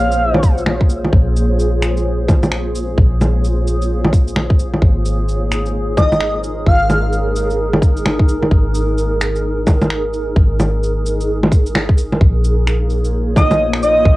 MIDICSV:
0, 0, Header, 1, 5, 480
1, 0, Start_track
1, 0, Key_signature, -5, "minor"
1, 0, Tempo, 461538
1, 1176, Time_signature, 4, 2, 24, 8
1, 14734, End_track
2, 0, Start_track
2, 0, Title_t, "Digital synth lead"
2, 0, Program_c, 0, 84
2, 0, Note_on_c, 0, 77, 91
2, 418, Note_off_c, 0, 77, 0
2, 6218, Note_on_c, 0, 75, 88
2, 6472, Note_off_c, 0, 75, 0
2, 6941, Note_on_c, 0, 77, 93
2, 7327, Note_off_c, 0, 77, 0
2, 13905, Note_on_c, 0, 75, 90
2, 14155, Note_off_c, 0, 75, 0
2, 14381, Note_on_c, 0, 75, 91
2, 14633, Note_off_c, 0, 75, 0
2, 14734, End_track
3, 0, Start_track
3, 0, Title_t, "Ambient pad"
3, 0, Program_c, 1, 92
3, 0, Note_on_c, 1, 58, 79
3, 0, Note_on_c, 1, 65, 81
3, 0, Note_on_c, 1, 68, 81
3, 0, Note_on_c, 1, 72, 85
3, 0, Note_on_c, 1, 73, 70
3, 5020, Note_on_c, 1, 63, 74
3, 5724, Note_on_c, 1, 70, 90
3, 5789, Note_off_c, 1, 58, 0
3, 6581, Note_off_c, 1, 73, 0
3, 6822, Note_off_c, 1, 72, 0
3, 6895, Note_off_c, 1, 65, 0
3, 12690, Note_off_c, 1, 68, 0
3, 12698, Note_on_c, 1, 58, 87
3, 12907, Note_on_c, 1, 73, 77
3, 12926, Note_on_c, 1, 65, 71
3, 12994, Note_on_c, 1, 68, 82
3, 13070, Note_on_c, 1, 72, 69
3, 14041, Note_off_c, 1, 70, 0
3, 14365, Note_off_c, 1, 63, 0
3, 14734, Note_off_c, 1, 58, 0
3, 14734, Note_off_c, 1, 65, 0
3, 14734, Note_off_c, 1, 68, 0
3, 14734, Note_off_c, 1, 72, 0
3, 14734, Note_off_c, 1, 73, 0
3, 14734, End_track
4, 0, Start_track
4, 0, Title_t, "808-style bass"
4, 0, Program_c, 2, 38
4, 0, Note_on_c, 2, 34, 85
4, 1154, Note_off_c, 2, 34, 0
4, 1173, Note_on_c, 2, 34, 90
4, 3076, Note_off_c, 2, 34, 0
4, 3094, Note_on_c, 2, 34, 89
4, 4997, Note_off_c, 2, 34, 0
4, 5013, Note_on_c, 2, 32, 84
4, 6916, Note_off_c, 2, 32, 0
4, 6933, Note_on_c, 2, 32, 87
4, 8836, Note_off_c, 2, 32, 0
4, 8852, Note_on_c, 2, 32, 87
4, 10756, Note_off_c, 2, 32, 0
4, 10776, Note_on_c, 2, 32, 87
4, 12678, Note_off_c, 2, 32, 0
4, 12700, Note_on_c, 2, 34, 90
4, 14600, Note_off_c, 2, 34, 0
4, 14619, Note_on_c, 2, 34, 89
4, 14734, Note_off_c, 2, 34, 0
4, 14734, End_track
5, 0, Start_track
5, 0, Title_t, "Drums"
5, 122, Note_on_c, 9, 82, 30
5, 226, Note_off_c, 9, 82, 0
5, 359, Note_on_c, 9, 61, 61
5, 449, Note_on_c, 9, 36, 105
5, 450, Note_on_c, 9, 82, 56
5, 463, Note_off_c, 9, 61, 0
5, 553, Note_off_c, 9, 36, 0
5, 554, Note_off_c, 9, 82, 0
5, 602, Note_on_c, 9, 82, 29
5, 690, Note_on_c, 9, 26, 101
5, 690, Note_on_c, 9, 61, 51
5, 706, Note_off_c, 9, 82, 0
5, 794, Note_off_c, 9, 26, 0
5, 794, Note_off_c, 9, 61, 0
5, 841, Note_on_c, 9, 36, 96
5, 932, Note_on_c, 9, 82, 56
5, 945, Note_off_c, 9, 36, 0
5, 1036, Note_off_c, 9, 82, 0
5, 1087, Note_on_c, 9, 61, 34
5, 1172, Note_on_c, 9, 36, 118
5, 1191, Note_off_c, 9, 61, 0
5, 1276, Note_off_c, 9, 36, 0
5, 1420, Note_on_c, 9, 82, 53
5, 1524, Note_off_c, 9, 82, 0
5, 1659, Note_on_c, 9, 82, 30
5, 1763, Note_off_c, 9, 82, 0
5, 1898, Note_on_c, 9, 26, 106
5, 1898, Note_on_c, 9, 82, 57
5, 2002, Note_off_c, 9, 26, 0
5, 2002, Note_off_c, 9, 82, 0
5, 2049, Note_on_c, 9, 82, 31
5, 2153, Note_off_c, 9, 82, 0
5, 2375, Note_on_c, 9, 36, 108
5, 2379, Note_on_c, 9, 61, 59
5, 2379, Note_on_c, 9, 82, 52
5, 2479, Note_off_c, 9, 36, 0
5, 2483, Note_off_c, 9, 61, 0
5, 2483, Note_off_c, 9, 82, 0
5, 2527, Note_on_c, 9, 61, 46
5, 2527, Note_on_c, 9, 82, 29
5, 2616, Note_on_c, 9, 26, 104
5, 2631, Note_off_c, 9, 61, 0
5, 2631, Note_off_c, 9, 82, 0
5, 2720, Note_off_c, 9, 26, 0
5, 2862, Note_on_c, 9, 82, 56
5, 2966, Note_off_c, 9, 82, 0
5, 3096, Note_on_c, 9, 36, 122
5, 3200, Note_off_c, 9, 36, 0
5, 3340, Note_on_c, 9, 61, 47
5, 3340, Note_on_c, 9, 82, 52
5, 3444, Note_off_c, 9, 61, 0
5, 3444, Note_off_c, 9, 82, 0
5, 3581, Note_on_c, 9, 82, 30
5, 3685, Note_off_c, 9, 82, 0
5, 3821, Note_on_c, 9, 82, 54
5, 3925, Note_off_c, 9, 82, 0
5, 3969, Note_on_c, 9, 82, 29
5, 4073, Note_off_c, 9, 82, 0
5, 4207, Note_on_c, 9, 61, 61
5, 4293, Note_on_c, 9, 36, 107
5, 4299, Note_on_c, 9, 82, 53
5, 4311, Note_off_c, 9, 61, 0
5, 4397, Note_off_c, 9, 36, 0
5, 4403, Note_off_c, 9, 82, 0
5, 4449, Note_on_c, 9, 82, 28
5, 4536, Note_on_c, 9, 26, 100
5, 4536, Note_on_c, 9, 61, 47
5, 4553, Note_off_c, 9, 82, 0
5, 4640, Note_off_c, 9, 26, 0
5, 4640, Note_off_c, 9, 61, 0
5, 4681, Note_on_c, 9, 36, 101
5, 4777, Note_on_c, 9, 82, 52
5, 4785, Note_off_c, 9, 36, 0
5, 4881, Note_off_c, 9, 82, 0
5, 4926, Note_on_c, 9, 61, 32
5, 5013, Note_on_c, 9, 36, 109
5, 5030, Note_off_c, 9, 61, 0
5, 5117, Note_off_c, 9, 36, 0
5, 5257, Note_on_c, 9, 82, 49
5, 5361, Note_off_c, 9, 82, 0
5, 5497, Note_on_c, 9, 82, 29
5, 5601, Note_off_c, 9, 82, 0
5, 5737, Note_on_c, 9, 26, 104
5, 5737, Note_on_c, 9, 82, 54
5, 5841, Note_off_c, 9, 26, 0
5, 5841, Note_off_c, 9, 82, 0
5, 5883, Note_on_c, 9, 82, 28
5, 5987, Note_off_c, 9, 82, 0
5, 6212, Note_on_c, 9, 36, 103
5, 6215, Note_on_c, 9, 61, 58
5, 6215, Note_on_c, 9, 82, 50
5, 6316, Note_off_c, 9, 36, 0
5, 6319, Note_off_c, 9, 61, 0
5, 6319, Note_off_c, 9, 82, 0
5, 6367, Note_on_c, 9, 61, 46
5, 6367, Note_on_c, 9, 82, 28
5, 6454, Note_on_c, 9, 26, 103
5, 6471, Note_off_c, 9, 61, 0
5, 6471, Note_off_c, 9, 82, 0
5, 6558, Note_off_c, 9, 26, 0
5, 6694, Note_on_c, 9, 82, 49
5, 6798, Note_off_c, 9, 82, 0
5, 6931, Note_on_c, 9, 36, 114
5, 7035, Note_off_c, 9, 36, 0
5, 7173, Note_on_c, 9, 61, 51
5, 7173, Note_on_c, 9, 82, 51
5, 7277, Note_off_c, 9, 61, 0
5, 7277, Note_off_c, 9, 82, 0
5, 7413, Note_on_c, 9, 82, 29
5, 7517, Note_off_c, 9, 82, 0
5, 7654, Note_on_c, 9, 82, 53
5, 7758, Note_off_c, 9, 82, 0
5, 7804, Note_on_c, 9, 82, 28
5, 7908, Note_off_c, 9, 82, 0
5, 8044, Note_on_c, 9, 61, 62
5, 8133, Note_on_c, 9, 36, 100
5, 8137, Note_on_c, 9, 82, 51
5, 8148, Note_off_c, 9, 61, 0
5, 8237, Note_off_c, 9, 36, 0
5, 8241, Note_off_c, 9, 82, 0
5, 8287, Note_on_c, 9, 82, 27
5, 8378, Note_on_c, 9, 26, 98
5, 8378, Note_on_c, 9, 61, 48
5, 8391, Note_off_c, 9, 82, 0
5, 8482, Note_off_c, 9, 26, 0
5, 8482, Note_off_c, 9, 61, 0
5, 8522, Note_on_c, 9, 36, 94
5, 8617, Note_on_c, 9, 82, 51
5, 8626, Note_off_c, 9, 36, 0
5, 8721, Note_off_c, 9, 82, 0
5, 8762, Note_on_c, 9, 61, 34
5, 8853, Note_on_c, 9, 36, 110
5, 8866, Note_off_c, 9, 61, 0
5, 8957, Note_off_c, 9, 36, 0
5, 9097, Note_on_c, 9, 82, 52
5, 9201, Note_off_c, 9, 82, 0
5, 9339, Note_on_c, 9, 82, 30
5, 9443, Note_off_c, 9, 82, 0
5, 9580, Note_on_c, 9, 26, 104
5, 9580, Note_on_c, 9, 82, 53
5, 9684, Note_off_c, 9, 26, 0
5, 9684, Note_off_c, 9, 82, 0
5, 9730, Note_on_c, 9, 82, 29
5, 9834, Note_off_c, 9, 82, 0
5, 10055, Note_on_c, 9, 36, 98
5, 10056, Note_on_c, 9, 61, 66
5, 10056, Note_on_c, 9, 82, 53
5, 10159, Note_off_c, 9, 36, 0
5, 10160, Note_off_c, 9, 61, 0
5, 10160, Note_off_c, 9, 82, 0
5, 10208, Note_on_c, 9, 61, 52
5, 10208, Note_on_c, 9, 82, 28
5, 10299, Note_on_c, 9, 26, 96
5, 10312, Note_off_c, 9, 61, 0
5, 10312, Note_off_c, 9, 82, 0
5, 10403, Note_off_c, 9, 26, 0
5, 10540, Note_on_c, 9, 82, 54
5, 10644, Note_off_c, 9, 82, 0
5, 10776, Note_on_c, 9, 36, 116
5, 10880, Note_off_c, 9, 36, 0
5, 11021, Note_on_c, 9, 61, 54
5, 11021, Note_on_c, 9, 82, 56
5, 11125, Note_off_c, 9, 61, 0
5, 11125, Note_off_c, 9, 82, 0
5, 11266, Note_on_c, 9, 82, 32
5, 11370, Note_off_c, 9, 82, 0
5, 11503, Note_on_c, 9, 82, 57
5, 11607, Note_off_c, 9, 82, 0
5, 11655, Note_on_c, 9, 82, 32
5, 11759, Note_off_c, 9, 82, 0
5, 11890, Note_on_c, 9, 61, 67
5, 11979, Note_on_c, 9, 36, 104
5, 11983, Note_on_c, 9, 82, 52
5, 11994, Note_off_c, 9, 61, 0
5, 12083, Note_off_c, 9, 36, 0
5, 12087, Note_off_c, 9, 82, 0
5, 12131, Note_on_c, 9, 82, 30
5, 12222, Note_on_c, 9, 26, 101
5, 12222, Note_on_c, 9, 61, 53
5, 12235, Note_off_c, 9, 82, 0
5, 12326, Note_off_c, 9, 26, 0
5, 12326, Note_off_c, 9, 61, 0
5, 12366, Note_on_c, 9, 36, 95
5, 12458, Note_on_c, 9, 82, 58
5, 12470, Note_off_c, 9, 36, 0
5, 12562, Note_off_c, 9, 82, 0
5, 12609, Note_on_c, 9, 61, 37
5, 12698, Note_on_c, 9, 36, 121
5, 12713, Note_off_c, 9, 61, 0
5, 12802, Note_off_c, 9, 36, 0
5, 12941, Note_on_c, 9, 82, 57
5, 13045, Note_off_c, 9, 82, 0
5, 13180, Note_on_c, 9, 26, 106
5, 13180, Note_on_c, 9, 82, 33
5, 13284, Note_off_c, 9, 26, 0
5, 13284, Note_off_c, 9, 82, 0
5, 13415, Note_on_c, 9, 82, 60
5, 13519, Note_off_c, 9, 82, 0
5, 13568, Note_on_c, 9, 82, 32
5, 13672, Note_off_c, 9, 82, 0
5, 13897, Note_on_c, 9, 36, 107
5, 13903, Note_on_c, 9, 61, 67
5, 13903, Note_on_c, 9, 82, 56
5, 14001, Note_off_c, 9, 36, 0
5, 14007, Note_off_c, 9, 61, 0
5, 14007, Note_off_c, 9, 82, 0
5, 14049, Note_on_c, 9, 61, 51
5, 14049, Note_on_c, 9, 82, 30
5, 14153, Note_off_c, 9, 61, 0
5, 14153, Note_off_c, 9, 82, 0
5, 14284, Note_on_c, 9, 26, 104
5, 14382, Note_on_c, 9, 82, 60
5, 14388, Note_off_c, 9, 26, 0
5, 14486, Note_off_c, 9, 82, 0
5, 14617, Note_on_c, 9, 36, 121
5, 14721, Note_off_c, 9, 36, 0
5, 14734, End_track
0, 0, End_of_file